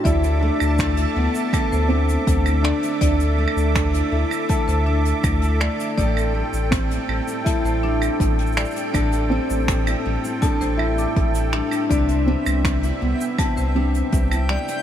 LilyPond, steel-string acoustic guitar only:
\new Staff \with { instrumentName = "Steel-string acoustic guitar" } { \time 4/4 \key a \dorian \tempo 4 = 81 <d a'>16 d'16 a8 d16 e'16 a16 d'16 <d a'>16 d'16 a8 d16 e'16 a16 d'16 | <d a'>16 d'16 a8 d16 e'16 a16 d'16 <d a'>16 d'16 a8 d16 e'16 a16 d'16 | <a, a'>16 c'16 g8 a,16 e'16 g16 c'16 <a, a'>16 c'16 g8 a,16 e'16 g16 c'16 | <a, a'>16 c'16 g8 a,16 e'16 g16 c'16 <a, a'>16 c'16 g8 a,16 e'16 g16 c'16 |
<c b'>16 c'16 g8 c16 e'16 g8 <c b'>16 c'16 g8 c16 e'16 g16 c'16 | }